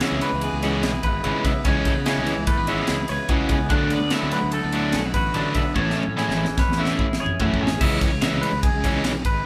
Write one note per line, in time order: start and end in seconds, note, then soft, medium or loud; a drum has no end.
0.00 0.22 C#3 medium
0.00 0.28 C#3 medium
0.00 0.22 E3 medium
0.00 0.29 E3 medium
0.00 0.29 G#3 loud
0.00 0.43 B3 medium
0.00 0.29 C#4 medium
0.00 0.83 E4 medium
0.00 0.63 G#4 medium
0.00 0.22 E5 medium
0.00 snare loud
0.00 ride medium
0.12 0.20 C#2 medium
0.21 2.26 E3 medium
0.21 0.43 B4 medium
0.21 ride medium
0.33 0.48 C#2 medium
0.41 1.44 B3 medium
0.41 0.84 G#4 medium
0.41 ride loud
0.53 0.84 C#2 medium
0.63 0.90 C#3 medium
0.63 0.90 E3 medium
0.63 0.90 G#3 medium
0.63 0.90 C#4 loud
0.63 0.73 F#4 medium
0.63 snare soft
0.63 ride medium
0.73 1.03 G#4 medium
0.83 0.99 B1 medium
0.83 2.05 E4 medium
0.83 snare loud
0.83 ride loud
1.03 1.20 G#1 medium
1.03 1.67 B4 medium
1.03 1.45 B4 medium
1.03 kick medium
1.03 ride medium
1.24 1.33 G#1 medium
1.24 1.51 C#3 medium
1.24 1.63 C#3 medium
1.24 1.51 E3 medium
1.24 1.51 G#3 medium
1.24 1.51 C#4 loud
1.24 ride loud
1.44 1.53 C#2 medium
1.44 1.67 B3 medium
1.44 1.65 E5 medium
1.44 kick medium
1.44 snare soft
1.44 ride medium
1.64 1.81 C#2 loud
1.64 2.27 C#3 medium
1.64 1.93 C#3 medium
1.64 1.92 E3 medium
1.64 1.93 G#3 medium
1.64 1.93 C#4 loud
1.64 2.07 C#5 medium
1.64 kick loud
1.64 ride loud
1.85 1.95 A3 medium
1.85 kick medium
1.85 snare soft
1.85 ride medium
1.95 2.19 C#3 medium
1.95 2.47 B3 medium
2.06 2.33 C#3 medium
2.06 2.34 E3 medium
2.06 2.34 G#3 loud
2.06 2.34 C#4 loud
2.06 2.90 E4 medium
2.06 2.47 G#4 medium
2.06 snare loud
2.06 ride loud
2.18 2.33 C#2 medium
2.26 4.34 E3 medium
2.26 snare soft
2.26 ride medium
2.38 2.45 C#2 medium
2.47 2.57 A3 medium
2.47 2.68 B4 medium
2.47 kick loud
2.47 snare soft
2.47 ride loud
2.57 2.81 G#1 medium
2.57 3.50 B3 medium
2.67 2.95 C#3 medium
2.67 2.95 E3 medium
2.67 2.95 G#3 loud
2.67 2.95 C#4 loud
2.67 2.80 F#4 medium
2.67 3.09 E5 medium
2.67 ride medium
2.80 3.10 G#4 medium
2.87 3.05 C#2 medium
2.87 3.75 E4 medium
2.87 snare loud
2.87 ride medium
3.08 3.18 C#2 loud
3.08 4.57 B4 medium
3.08 3.30 C#5 medium
3.08 snare soft
3.08 ride medium
3.29 3.45 C#2 loud
3.29 3.57 C#3 medium
3.29 3.69 C#3 medium
3.29 3.57 E3 loud
3.29 3.57 G#3 medium
3.29 3.57 C#4 loud
3.29 3.50 F#4 medium
3.29 kick loud
3.29 ride medium
3.49 3.66 C#2 loud
3.49 3.93 B3 medium
3.49 3.71 G#4 medium
3.49 kick medium
3.49 ride medium
3.70 3.94 D2 loud
3.70 3.97 D3 medium
3.70 5.35 D3 medium
3.70 3.98 F#3 medium
3.70 3.98 A3 medium
3.70 3.98 D4 loud
3.70 3.91 F#5 medium
3.70 kick loud
3.70 ride medium
3.90 4.54 B3 medium
3.90 4.12 D5 medium
3.90 ride medium
4.01 4.09 D2 medium
4.10 4.38 D3 medium
4.10 4.39 F#3 medium
4.10 4.39 A3 medium
4.10 4.39 D4 medium
4.10 4.94 E4 medium
4.10 4.33 E5 medium
4.10 snare loud
4.10 ride loud
4.23 4.31 D2 medium
4.31 5.75 F#3 medium
4.31 4.53 B4 medium
4.31 snare soft
4.31 ride medium
4.43 4.59 D2 medium
4.52 4.64 A3 medium
4.52 4.94 A4 medium
4.52 ride loud
4.64 4.95 D2 medium
4.64 5.56 B3 medium
4.72 5.01 D3 medium
4.72 5.01 F#3 medium
4.72 5.00 A3 loud
4.72 5.00 D4 loud
4.72 5.15 F#4 medium
4.72 ride medium
4.92 5.10 B1 medium
4.92 5.06 C#4 medium
4.92 snare loud
4.92 ride medium
5.06 5.77 E4 medium
5.14 5.30 A1 medium
5.14 5.77 F#4 medium
5.14 5.56 B4 medium
5.14 kick medium
5.14 ride medium
5.34 5.43 A1 medium
5.34 5.61 D3 medium
5.34 5.74 D3 medium
5.34 5.62 F#3 medium
5.34 5.62 A3 medium
5.34 5.62 D4 loud
5.34 ride loud
5.54 5.63 B1 medium
5.54 5.81 B3 medium
5.54 5.76 E5 medium
5.54 kick medium
5.54 ride medium
5.75 5.92 A1 loud
5.75 7.40 A2 medium
5.75 6.03 E3 medium
5.75 6.03 A3 loud
5.75 6.03 C#4 medium
5.75 6.03 E4 loud
5.75 6.17 C#5 medium
5.75 kick loud
5.90 snare medium
5.98 6.58 C#4 medium
6.03 high tom medium
6.08 6.30 A2 medium
6.17 6.44 E3 medium
6.17 6.44 A3 loud
6.17 6.44 C#4 loud
6.17 6.44 E4 loud
6.17 6.99 E4 medium
6.17 6.59 G#4 medium
6.17 snare medium
6.29 6.44 A1 medium
6.29 snare medium
6.37 9.46 E3 medium
6.45 6.56 A1 medium
6.45 snare medium
6.57 7.61 C#4 medium
6.57 6.79 B4 medium
6.57 kick loud
6.57 snare medium
6.69 6.93 E2 medium
6.69 snare medium
6.78 7.06 E3 medium
6.78 7.06 A3 medium
6.78 7.06 C#4 medium
6.78 7.05 E4 loud
6.78 6.90 F#4 medium
6.78 7.20 E5 medium
6.85 snare medium
6.90 7.20 G#4 medium
6.99 7.15 A1 medium
6.99 7.80 E4 medium
6.99 kick medium
7.13 snare medium
7.20 7.29 A1 loud
7.20 7.80 G#4 medium
7.20 7.41 C#5 medium
7.26 floor tom medium
7.40 7.56 A1 loud
7.40 7.80 A2 medium
7.40 7.67 E3 medium
7.40 7.68 A3 medium
7.40 7.68 C#4 medium
7.40 7.68 E4 loud
7.40 7.61 F#4 medium
7.40 kick loud
7.40 floor tom loud
7.54 kick medium
7.61 7.77 A1 medium
7.61 7.80 C#4 medium
7.61 7.82 G#4 medium
7.67 snare loud
7.81 8.05 C#2 loud
7.81 8.08 C#3 loud
7.81 8.09 E3 medium
7.81 8.09 G#3 loud
7.81 8.09 C#4 loud
7.81 8.01 E5 loud
7.81 kick loud
7.81 crash loud
8.01 8.21 C#5 medium
8.01 kick medium
8.01 ride medium
8.13 8.21 C#2 medium
8.21 8.50 C#3 medium
8.21 8.50 E3 medium
8.21 8.50 G#3 loud
8.21 8.50 C#4 loud
8.21 8.43 E5 medium
8.21 snare loud
8.21 ride loud
8.32 8.41 C#2 medium
8.41 8.63 B4 medium
8.41 ride medium
8.53 8.69 C#2 medium
8.63 9.04 G#4 medium
8.63 kick loud
8.63 ride loud
8.74 9.05 C#2 medium
8.84 9.11 C#3 medium
8.84 9.11 E3 loud
8.84 9.11 G#3 medium
8.84 9.11 C#4 loud
8.84 kick medium
8.84 ride medium
9.04 9.21 B1 medium
9.04 snare loud
9.04 ride loud
9.25 9.41 G#1 medium
9.25 9.46 B4 medium
9.25 kick medium
9.25 ride medium